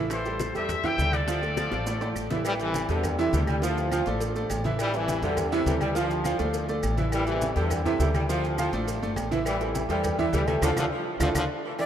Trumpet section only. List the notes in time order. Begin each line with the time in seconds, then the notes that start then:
0.13 A4 C5
0.56 C5 E5
0.86 E5 G5
1.14 A4 D5